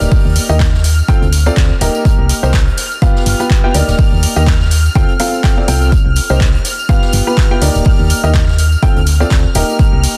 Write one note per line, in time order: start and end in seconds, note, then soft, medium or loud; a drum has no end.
0.00 0.07 D1 medium
0.00 0.46 A#3 medium
0.00 0.46 D#4 medium
0.00 0.46 G4 medium
0.00 0.46 D5 loud
0.00 10.17 F6 medium
0.00 closed hi-hat soft
0.00 tambourine medium
0.11 kick loud
0.11 open hi-hat medium
0.11 tambourine soft
0.25 0.39 D#2 medium
0.36 closed hi-hat medium
0.36 open hi-hat loud
0.36 tambourine medium
0.49 1.02 D#2 loud
0.49 0.62 A#3 medium
0.49 0.62 D#4 medium
0.49 0.62 G4 medium
0.49 0.62 D#5 medium
0.49 tambourine soft
0.60 kick loud
0.60 snare loud
0.60 clap loud
0.60 closed hi-hat medium
0.60 tambourine soft
0.74 snare soft
0.84 closed hi-hat medium
0.84 open hi-hat loud
0.84 tambourine medium
0.99 tambourine soft
1.08 1.24 C4 medium
1.08 1.24 F4 medium
1.08 1.24 A4 medium
1.08 1.24 G5 medium
1.08 kick loud
1.08 closed hi-hat medium
1.08 tambourine soft
1.22 1.50 D2 loud
1.22 closed hi-hat soft
1.32 snare soft
1.32 closed hi-hat medium
1.32 open hi-hat loud
1.32 tambourine medium
1.46 1.69 C4 medium
1.46 1.69 F4 medium
1.46 1.69 A4 medium
1.46 1.69 D5 medium
1.46 tambourine medium
1.56 1.73 D2 medium
1.56 kick loud
1.56 snare loud
1.56 clap loud
1.56 closed hi-hat medium
1.81 1.89 D1 medium
1.81 2.40 A#3 medium
1.81 2.40 D#4 medium
1.81 2.40 G4 medium
1.81 2.40 A#4 medium
1.81 closed hi-hat medium
1.81 open hi-hat loud
1.81 tambourine loud
1.95 tambourine medium
2.05 kick loud
2.05 closed hi-hat medium
2.05 tambourine soft
2.19 2.32 C2 medium
2.29 snare soft
2.29 closed hi-hat medium
2.29 open hi-hat loud
2.29 tambourine loud
2.43 2.71 C2 loud
2.43 2.56 A#3 medium
2.43 2.56 D#4 medium
2.43 2.56 G4 medium
2.43 2.56 C5 medium
2.43 tambourine medium
2.53 kick loud
2.53 snare loud
2.53 clap loud
2.53 closed hi-hat medium
2.53 tambourine soft
2.68 closed hi-hat soft
2.77 closed hi-hat medium
2.77 open hi-hat loud
2.77 tambourine medium
2.92 tambourine medium
3.02 3.37 B3 medium
3.02 3.37 F4 medium
3.02 3.37 G4 medium
3.02 3.37 F5 medium
3.02 kick loud
3.02 closed hi-hat medium
3.02 tambourine soft
3.16 snare medium
3.26 3.34 G1 loud
3.26 snare loud
3.26 closed hi-hat medium
3.26 open hi-hat loud
3.26 tambourine medium
3.40 3.61 B3 medium
3.40 3.61 F4 medium
3.40 3.61 G4 medium
3.40 3.61 B4 medium
3.40 closed hi-hat soft
3.40 tambourine medium
3.50 kick loud
3.50 clap loud
3.50 closed hi-hat medium
3.50 tambourine soft
3.64 3.73 B3 medium
3.64 3.73 F4 medium
3.64 3.73 G4 medium
3.64 3.73 G5 medium
3.74 3.83 D2 loud
3.74 4.33 A#3 medium
3.74 4.33 D#4 medium
3.74 4.33 G4 medium
3.74 4.33 D5 medium
3.74 closed hi-hat medium
3.74 open hi-hat loud
3.74 tambourine medium
3.87 3.95 D1 medium
3.87 snare medium
3.87 tambourine medium
3.99 kick loud
3.99 open hi-hat medium
3.99 tambourine soft
4.12 4.26 D#2 medium
4.23 closed hi-hat medium
4.23 open hi-hat loud
4.23 tambourine medium
4.36 4.89 D#2 loud
4.36 4.49 A#3 medium
4.36 4.49 D#4 medium
4.36 4.49 G4 medium
4.36 4.49 D#5 medium
4.36 tambourine medium
4.47 kick loud
4.47 snare loud
4.47 clap loud
4.47 closed hi-hat medium
4.47 tambourine soft
4.60 snare soft
4.71 closed hi-hat medium
4.71 open hi-hat loud
4.71 tambourine medium
4.86 tambourine soft
4.95 5.04 D2 medium
4.95 5.11 C4 medium
4.95 5.11 F4 medium
4.95 5.11 A4 medium
4.95 5.11 G5 medium
4.95 kick loud
4.95 closed hi-hat medium
5.08 closed hi-hat soft
5.19 5.41 C4 medium
5.19 5.41 F4 medium
5.19 5.41 A4 medium
5.19 5.41 F5 medium
5.19 snare soft
5.19 closed hi-hat medium
5.19 open hi-hat loud
5.19 tambourine medium
5.34 tambourine medium
5.44 5.55 C4 medium
5.44 5.55 F4 medium
5.44 5.55 A4 medium
5.44 5.55 G5 medium
5.44 kick loud
5.44 snare loud
5.44 clap loud
5.44 closed hi-hat medium
5.44 tambourine soft
5.57 5.67 C4 medium
5.57 5.67 F4 medium
5.57 5.67 A4 medium
5.57 5.67 D5 medium
5.68 5.97 C2 loud
5.68 5.91 C4 medium
5.68 5.91 F4 medium
5.68 5.91 A4 medium
5.68 5.91 G5 loud
5.68 closed hi-hat medium
5.68 open hi-hat loud
5.68 tambourine medium
5.82 tambourine medium
5.92 kick loud
5.92 closed hi-hat medium
5.92 tambourine soft
6.06 6.19 C2 medium
6.16 snare soft
6.16 closed hi-hat medium
6.16 open hi-hat loud
6.16 tambourine medium
6.29 6.58 C2 loud
6.29 6.43 A#3 medium
6.29 6.43 D#4 medium
6.29 6.43 G4 medium
6.29 6.43 C5 medium
6.29 tambourine medium
6.41 kick loud
6.41 snare loud
6.41 clap loud
6.41 closed hi-hat medium
6.55 closed hi-hat soft
6.65 closed hi-hat medium
6.65 open hi-hat loud
6.65 tambourine medium
6.79 tambourine soft
6.89 7.24 B3 medium
6.89 7.24 F4 medium
6.89 7.24 G4 medium
6.89 7.24 F5 medium
6.89 kick loud
6.89 closed hi-hat medium
6.89 tambourine soft
7.02 snare medium
7.13 7.21 G1 loud
7.13 snare soft
7.13 closed hi-hat medium
7.13 open hi-hat loud
7.13 tambourine medium
7.27 7.48 B3 medium
7.27 7.48 F4 medium
7.27 7.48 G4 medium
7.27 7.48 B4 medium
7.27 tambourine soft
7.37 kick loud
7.37 snare loud
7.37 clap loud
7.37 closed hi-hat medium
7.51 7.60 B3 medium
7.51 7.60 F4 medium
7.51 7.60 G4 medium
7.51 7.60 G5 medium
7.61 7.70 D2 loud
7.61 8.20 A#3 medium
7.61 8.20 D#4 medium
7.61 8.20 G4 medium
7.61 8.20 D5 loud
7.61 closed hi-hat medium
7.61 open hi-hat loud
7.61 tambourine medium
7.75 7.82 D1 medium
7.75 closed hi-hat soft
7.75 tambourine soft
7.84 kick loud
7.84 open hi-hat medium
7.84 tambourine soft
7.99 8.13 D#2 medium
8.09 closed hi-hat medium
8.09 open hi-hat loud
8.09 tambourine medium
8.24 8.76 D#2 loud
8.24 8.37 A#3 medium
8.24 8.37 D#4 medium
8.24 8.37 G4 medium
8.24 8.37 D#5 medium
8.24 tambourine medium
8.34 kick loud
8.34 snare loud
8.34 clap loud
8.34 closed hi-hat medium
8.34 tambourine soft
8.48 snare soft
8.58 closed hi-hat medium
8.58 open hi-hat loud
8.58 tambourine medium
8.72 tambourine soft
8.82 8.98 C4 medium
8.82 8.98 F4 medium
8.82 8.98 A4 medium
8.82 8.98 G5 medium
8.82 kick loud
8.82 closed hi-hat medium
8.82 tambourine soft
8.96 9.24 D2 loud
8.96 closed hi-hat soft
9.06 snare soft
9.06 closed hi-hat medium
9.06 open hi-hat loud
9.06 tambourine medium
9.20 9.43 C4 medium
9.20 9.43 F4 medium
9.20 9.43 A4 medium
9.20 9.43 D5 medium
9.20 tambourine medium
9.31 9.47 D2 medium
9.31 kick loud
9.31 snare loud
9.31 clap loud
9.31 closed hi-hat medium
9.31 tambourine soft
9.55 9.63 D1 medium
9.55 10.14 A#3 medium
9.55 10.14 D#4 medium
9.55 10.14 G4 medium
9.55 10.14 A#4 medium
9.55 closed hi-hat medium
9.55 open hi-hat loud
9.55 tambourine medium
9.69 tambourine medium
9.79 kick loud
9.79 closed hi-hat medium
9.79 tambourine soft
9.93 10.07 C2 medium
10.03 snare soft
10.03 closed hi-hat medium
10.03 open hi-hat loud
10.03 tambourine medium